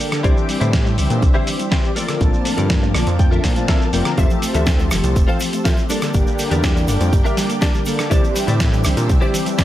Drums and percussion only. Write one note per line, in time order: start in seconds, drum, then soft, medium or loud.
0.00 shaker medium
0.12 cross-stick medium
0.12 closed hi-hat medium
0.12 shaker soft
0.24 kick loud
0.24 closed hi-hat medium
0.24 shaker soft
0.37 shaker soft
0.49 open hi-hat loud
0.49 shaker medium
0.61 closed hi-hat medium
0.61 shaker soft
0.73 kick loud
0.73 snare loud
0.73 closed hi-hat medium
0.73 shaker soft
0.86 shaker soft
0.98 open hi-hat loud
0.98 shaker medium
1.10 closed hi-hat medium
1.10 shaker soft
1.22 kick loud
1.22 closed hi-hat medium
1.22 shaker soft
1.47 open hi-hat loud
1.47 shaker medium
1.60 closed hi-hat medium
1.60 shaker soft
1.72 kick loud
1.72 snare loud
1.72 closed hi-hat medium
1.72 shaker soft
1.84 shaker soft
1.96 open hi-hat loud
1.96 shaker medium
2.09 cross-stick medium
2.09 closed hi-hat medium
2.09 shaker soft
2.21 kick loud
2.21 closed hi-hat soft
2.21 shaker soft
2.34 shaker soft
2.45 open hi-hat loud
2.45 shaker medium
2.58 closed hi-hat medium
2.58 shaker soft
2.70 kick loud
2.70 snare loud
2.70 closed hi-hat medium
2.70 shaker soft
2.83 shaker soft
2.95 cross-stick medium
2.95 open hi-hat medium
2.95 shaker medium
3.07 closed hi-hat medium
3.07 shaker soft
3.19 kick loud
3.19 closed hi-hat soft
3.19 shaker soft
3.32 shaker soft
3.44 kick medium
3.44 snare medium
3.44 open hi-hat loud
3.44 shaker medium
3.56 closed hi-hat medium
3.56 shaker soft
3.68 kick loud
3.68 snare loud
3.68 closed hi-hat soft
3.68 shaker soft
3.81 shaker soft
3.93 open hi-hat medium
3.93 shaker medium
4.05 cross-stick medium
4.05 closed hi-hat medium
4.05 shaker soft
4.18 kick loud
4.18 closed hi-hat medium
4.18 cabasa soft
4.18 shaker soft
4.30 cabasa soft
4.30 shaker soft
4.42 open hi-hat loud
4.42 cabasa medium
4.42 shaker medium
4.55 closed hi-hat medium
4.55 cabasa soft
4.55 shaker soft
4.66 kick loud
4.66 snare loud
4.66 closed hi-hat medium
4.66 cabasa soft
4.66 shaker soft
4.79 cabasa soft
4.79 shaker soft
4.91 cross-stick medium
4.91 open hi-hat medium
4.91 cabasa medium
4.91 shaker medium
5.04 closed hi-hat medium
5.04 cabasa soft
5.04 shaker soft
5.16 kick loud
5.16 closed hi-hat soft
5.16 cabasa soft
5.16 shaker soft
5.28 cabasa soft
5.40 open hi-hat loud
5.40 cabasa medium
5.40 shaker medium
5.53 closed hi-hat medium
5.53 cabasa soft
5.53 shaker soft
5.65 kick loud
5.65 snare loud
5.65 closed hi-hat soft
5.65 cabasa soft
5.65 shaker soft
5.77 cabasa soft
5.77 shaker soft
5.89 open hi-hat medium
5.89 cabasa loud
5.89 shaker medium
6.01 cross-stick medium
6.01 closed hi-hat medium
6.01 cabasa soft
6.01 shaker soft
6.14 kick loud
6.14 closed hi-hat medium
6.14 cabasa soft
6.14 shaker soft
6.27 cabasa soft
6.27 shaker soft
6.39 open hi-hat loud
6.39 cabasa medium
6.39 shaker medium
6.51 closed hi-hat medium
6.51 cabasa soft
6.51 shaker soft
6.63 kick loud
6.63 snare loud
6.63 closed hi-hat medium
6.63 cabasa medium
6.63 shaker soft
6.77 cabasa soft
6.77 shaker soft
6.88 open hi-hat medium
6.88 cabasa medium
6.88 shaker medium
7.01 closed hi-hat medium
7.01 cabasa soft
7.01 shaker soft
7.13 kick loud
7.13 closed hi-hat medium
7.13 cabasa soft
7.13 shaker soft
7.25 cabasa soft
7.25 shaker soft
7.37 snare medium
7.37 open hi-hat loud
7.37 cabasa medium
7.37 shaker medium
7.50 closed hi-hat medium
7.50 cabasa soft
7.50 shaker soft
7.61 kick loud
7.61 snare loud
7.61 closed hi-hat medium
7.61 cabasa soft
7.61 shaker soft
7.74 cabasa soft
7.74 shaker soft
7.85 open hi-hat medium
7.85 cabasa medium
7.85 shaker medium
7.99 cross-stick medium
7.99 closed hi-hat medium
7.99 cabasa soft
7.99 shaker soft
8.11 kick loud
8.11 closed hi-hat medium
8.11 cabasa medium
8.11 shaker soft
8.24 cabasa soft
8.24 shaker soft
8.36 open hi-hat loud
8.36 cabasa medium
8.36 shaker medium
8.48 closed hi-hat medium
8.48 cabasa soft
8.48 shaker soft
8.60 kick loud
8.60 snare loud
8.60 closed hi-hat medium
8.60 cabasa medium
8.60 shaker medium
8.73 cabasa soft
8.73 shaker soft
8.84 cross-stick medium
8.84 open hi-hat medium
8.84 cabasa medium
8.84 shaker medium
8.97 closed hi-hat medium
8.97 cabasa soft
8.97 shaker soft
9.09 kick loud
9.09 closed hi-hat medium
9.09 cabasa soft
9.09 shaker soft
9.22 cabasa soft
9.34 open hi-hat loud
9.34 cabasa medium
9.34 shaker medium
9.46 closed hi-hat medium
9.46 cabasa soft
9.46 shaker soft
9.58 kick loud
9.58 snare loud
9.58 closed hi-hat medium
9.58 cabasa medium
9.58 shaker soft